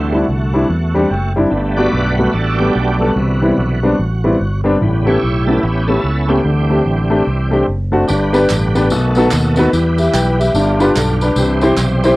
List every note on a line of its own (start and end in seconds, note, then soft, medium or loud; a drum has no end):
0.00 0.22 D2 medium
0.00 0.50 D3 medium
0.00 0.18 E3 medium
0.00 0.17 G3 soft
0.00 1.33 A3 medium
0.00 0.18 C4 medium
0.00 1.33 F#4 medium
0.12 0.22 G3 medium
0.12 0.22 C4 medium
0.12 0.23 D4 medium
0.12 0.23 E4 medium
0.29 0.63 C2 medium
0.54 0.63 G3 medium
0.54 0.63 C4 medium
0.54 0.64 D4 medium
0.54 0.64 E4 medium
0.69 1.04 E2 medium
0.94 1.04 G3 medium
0.94 1.05 C4 medium
0.94 1.05 D4 medium
0.94 1.05 G4 medium
1.10 1.46 F#1 medium
1.10 1.49 G5 medium
1.36 1.46 G3 medium
1.36 1.46 C4 medium
1.36 1.46 D4 medium
1.36 1.46 E4 medium
1.50 1.86 G1 medium
1.50 2.14 G2 medium
1.50 3.12 G3 medium
1.50 3.12 A3 soft
1.50 2.58 B3 medium
1.77 1.87 G3 medium
1.77 1.87 A3 medium
1.77 1.87 B3 medium
1.77 2.32 F#4 medium
1.77 1.87 F#4 medium
1.77 2.16 B4 medium
1.77 2.15 D5 loud
1.93 2.28 B1 medium
2.17 2.28 G3 medium
2.17 2.28 A3 medium
2.17 2.28 B3 medium
2.17 2.28 F#4 medium
2.17 2.34 B4 medium
2.32 2.69 A1 medium
2.32 2.57 D4 medium
2.32 3.00 F#4 medium
2.32 2.59 A4 medium
2.59 2.69 G3 medium
2.59 2.69 A3 medium
2.59 3.00 B3 medium
2.59 2.70 B3 medium
2.59 3.12 D4 medium
2.59 2.97 G4 loud
2.59 2.70 G4 medium
2.75 3.10 B1 medium
3.00 3.10 G3 medium
3.00 3.10 A3 medium
3.00 3.10 B3 medium
3.00 3.16 B3 medium
3.00 4.61 F#4 medium
3.00 3.11 A4 medium
3.16 3.51 C2 medium
3.16 3.79 C3 medium
3.16 3.80 D3 medium
3.16 3.80 E3 soft
3.16 3.80 B3 medium
3.42 3.51 G3 medium
3.42 3.52 B3 medium
3.42 3.52 C4 medium
3.42 3.52 E4 medium
3.58 3.92 B1 medium
3.83 3.93 G3 medium
3.83 3.93 B3 medium
3.83 3.93 C4 medium
3.83 3.93 D4 medium
3.99 4.34 A1 medium
4.24 4.34 G3 medium
4.24 4.34 B3 medium
4.24 4.34 C4 medium
4.24 4.34 E4 medium
4.40 4.75 G1 medium
4.64 4.74 G3 medium
4.64 4.75 B3 medium
4.64 4.75 C4 medium
4.64 4.75 D4 medium
4.81 5.16 A1 medium
4.81 5.43 A2 medium
4.81 5.11 C#3 medium
4.81 5.12 G3 medium
4.81 5.12 B3 medium
5.06 5.16 A3 medium
5.06 5.16 B3 medium
5.06 5.16 C#4 medium
5.06 5.85 E4 medium
5.06 5.63 G4 medium
5.06 5.16 G4 medium
5.06 5.45 C#5 medium
5.23 5.57 B1 medium
5.45 5.60 C#3 soft
5.45 5.60 G3 soft
5.45 5.57 A3 medium
5.45 5.61 B3 medium
5.45 5.57 B3 medium
5.45 5.57 C#4 medium
5.45 5.58 E4 medium
5.45 5.63 A4 medium
5.63 5.98 A1 loud
5.63 6.41 B3 medium
5.63 5.87 C#4 medium
5.63 5.90 G4 medium
5.88 5.98 A3 medium
5.88 5.98 B3 medium
5.88 6.41 C#4 medium
5.88 5.98 C#4 medium
5.88 6.41 E4 medium
5.88 5.98 G4 medium
5.88 6.30 A4 medium
6.04 6.39 C#2 medium
6.28 6.39 A3 medium
6.28 6.39 B3 medium
6.28 6.42 C4 medium
6.28 6.39 C#4 medium
6.28 7.64 G4 medium
6.28 6.39 G4 medium
6.42 6.80 D2 medium
6.42 7.07 D3 medium
6.42 7.51 E3 medium
6.42 7.51 G3 soft
6.42 7.51 C4 medium
6.70 6.80 A3 medium
6.70 6.80 C4 medium
6.70 6.80 D4 medium
6.70 6.81 G4 medium
6.86 7.21 A1 medium
7.10 7.20 A3 medium
7.10 7.21 C4 medium
7.10 7.21 D4 medium
7.10 7.21 G4 medium
7.27 7.62 C2 medium
7.51 7.66 E3 soft
7.51 7.66 G3 soft
7.51 7.61 A3 medium
7.51 7.62 C4 medium
7.51 7.67 C4 medium
7.51 7.62 D4 medium
7.51 7.62 G4 medium
7.68 8.03 F#1 medium
7.92 8.02 A3 medium
7.92 8.02 C4 medium
7.92 8.03 D4 medium
7.92 8.03 F#4 medium
8.07 8.44 G1 medium
8.07 8.71 G2 medium
8.07 8.90 D3 medium
8.07 8.90 G3 medium
8.07 11.33 B3 medium
8.07 8.89 G4 medium
8.07 8.89 B4 medium
8.07 tambourine medium
8.33 8.43 B3 medium
8.33 8.44 D4 medium
8.33 8.44 G4 medium
8.33 8.44 B4 loud
8.33 tambourine medium
8.49 8.91 A1 medium
8.49 clap medium
8.49 tambourine medium
8.75 8.85 B3 medium
8.75 8.85 D4 medium
8.75 8.85 G4 medium
8.75 8.85 B4 medium
8.75 tambourine medium
8.90 9.26 B1 loud
8.90 9.53 B2 medium
8.90 9.72 D#3 medium
8.90 9.72 A3 medium
8.90 9.72 F#4 medium
8.90 9.72 A4 medium
8.90 tambourine medium
9.15 9.26 B3 medium
9.15 9.26 D#4 medium
9.15 9.26 F#4 medium
9.15 9.27 A4 medium
9.15 tambourine medium
9.31 9.67 D#2 loud
9.31 clap loud
9.31 tambourine medium
9.56 9.67 B3 medium
9.56 9.67 D#4 medium
9.56 9.67 F#4 medium
9.56 9.68 B4 loud
9.56 tambourine medium
9.73 10.08 E2 loud
9.73 10.54 E3 medium
9.73 10.35 E3 medium
9.73 10.54 G3 medium
9.73 12.16 G4 medium
9.73 10.54 B4 medium
9.73 tambourine medium
9.98 10.13 G4 medium
9.98 10.13 E5 medium
9.98 tambourine medium
10.13 10.48 B1 medium
10.13 10.38 B4 medium
10.13 10.38 G5 medium
10.13 clap medium
10.13 tambourine medium
10.39 10.78 G4 medium
10.39 10.78 E5 medium
10.39 tambourine medium
10.54 10.89 G1 loud
10.54 11.17 G2 medium
10.54 11.36 D3 medium
10.54 12.16 G3 medium
10.54 11.36 F4 medium
10.54 tambourine medium
10.79 10.89 D4 medium
10.79 10.90 F4 medium
10.79 10.90 G4 medium
10.79 10.90 B4 medium
10.79 tambourine medium
10.96 11.30 B1 medium
10.96 11.20 A4 medium
10.96 clap medium
10.96 tambourine loud
11.21 11.61 D4 medium
11.21 11.60 B4 medium
11.21 tambourine medium
11.35 11.71 C2 medium
11.35 11.99 C3 medium
11.35 12.16 E3 medium
11.35 12.16 C4 medium
11.35 12.16 C5 medium
11.35 tambourine medium
11.61 11.71 C4 medium
11.61 11.72 E4 medium
11.61 11.72 G4 medium
11.61 11.72 C5 loud
11.61 tambourine medium
11.77 12.12 B1 loud
11.77 clap medium
11.77 tambourine medium
12.04 12.13 C4 medium
12.04 12.13 E4 medium
12.04 12.13 G4 medium
12.04 12.14 C5 loud
12.04 tambourine medium